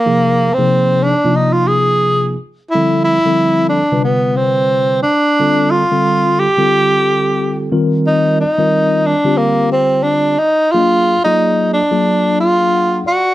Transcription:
Already playing: A#3
0.06 C3 F3 A#3 D#4 G#4
0.54 C3 C4
0.58 F3 A#3 D#4 G#4
1.03 D4
1.24 C3 F3 A#3 D#4 F4
1.36 D#4
1.53 F4
1.68 G#4
2.71 D3 G3 C4 E4
2.75 F3 A4
3.04 E4
3.25 D3 F3 G3 C4 A4
3.69 D4
3.92 C3 D3 G3 F4 B4
4.04 B3
4.37 C4
5.03 D4
5.39 D3 G3 C4 F4 A4
5.71 F4
5.91 D3 G3 C4 F4 A4
6.39 G4
6.57 D3 G3 C4 F4 A4
7.71 D#3 G3 C4 F4 A#4
8.07 D#4
8.41 D#4
8.58 D#3 G3 C4 F4 A#4
9.06 D4
9.24 D3 G3 C4 F4 G4
9.37 A#3
9.72 C4
10.03 D4
10.38 D#4
10.72 F#3 A#3 D4 F4 G#4
11.24 F#3 A#3 D#4 F4 G#4 D5
11.73 D4
11.91 F#3 A#3 D4 F4 G#4
12.40 F4
12.73 F#5
13.06 F#4 D5

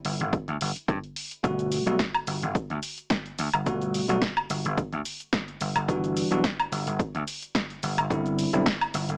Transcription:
0.05 G1, open hi-hat
0.20 G1, closed hi-hat
0.33 kick, closed hi-hat
0.48 D2, closed hi-hat
0.61 G1, open hi-hat
0.76 muted slap bass stroke, closed hi-hat
0.88 G2, kick, closed hi-hat
1.04 closed hi-hat
1.16 open hi-hat
1.31 closed hi-hat
1.43 G1 B2 G3 A3 F#4, kick, closed hi-hat, shaker
1.59 closed hi-hat, shaker
1.72 open hi-hat, shaker
1.86 B1 B2 G3 A3 F#4, closed hi-hat, shaker
1.99 kick, snare, closed hi-hat, shaker
2.14 closed hi-hat, high woodblock
2.27 G1, open hi-hat, shaker
2.42 G1, closed hi-hat, shaker
2.55 muted slap bass stroke, kick, closed hi-hat, shaker
2.70 D2, closed hi-hat
2.83 open hi-hat, shaker
2.98 closed hi-hat, shaker
3.10 kick, snare, closed hi-hat, shaker
3.26 closed hi-hat
3.39 D2, open hi-hat, shaker
3.53 G1, closed hi-hat, high woodblock, shaker
3.66 G1 B2 G3 A3 F#4, kick, closed hi-hat, shaker
3.82 closed hi-hat, shaker
3.94 open hi-hat, shaker
4.08 B1 B2 G3 A3 F#4, closed hi-hat, shaker
4.22 kick, snare, closed hi-hat, shaker
4.37 closed hi-hat, high woodblock
4.50 G1, open hi-hat, shaker
4.65 G1, closed hi-hat, shaker
4.77 kick, closed hi-hat, shaker
4.92 D2, closed hi-hat
5.05 open hi-hat, shaker
5.20 closed hi-hat, shaker
5.33 kick, snare, closed hi-hat, shaker
5.48 closed hi-hat
5.61 G1, open hi-hat, shaker
5.76 G1, closed hi-hat, high woodblock, shaker
5.88 G1 E3 G3 D4 F#4, kick, closed hi-hat, shaker
6.04 closed hi-hat, shaker
6.17 open hi-hat, shaker
6.31 B1 E3 G3 D4 F#4, closed hi-hat, shaker
6.44 kick, snare, closed hi-hat, shaker
6.60 closed hi-hat, high woodblock
6.72 G1, open hi-hat, shaker
6.87 G1, closed hi-hat, shaker
6.99 muted slap bass stroke, kick, closed hi-hat, shaker
7.15 D2, closed hi-hat
7.28 open hi-hat, shaker
7.42 closed hi-hat, shaker
7.55 kick, snare, closed hi-hat, shaker
7.70 closed hi-hat
7.83 G1, open hi-hat, shaker
7.98 G1, closed hi-hat, high woodblock, shaker
8.10 G1 D3 G3 C4 E4, kick, closed hi-hat, shaker
8.26 closed hi-hat, shaker
8.39 open hi-hat, shaker
8.53 B1 D3 G3 C4 E4, closed hi-hat, shaker
8.66 kick, snare, closed hi-hat, shaker
8.81 closed hi-hat, high woodblock
8.94 G1, open hi-hat, shaker
9.09 G1, closed hi-hat, shaker

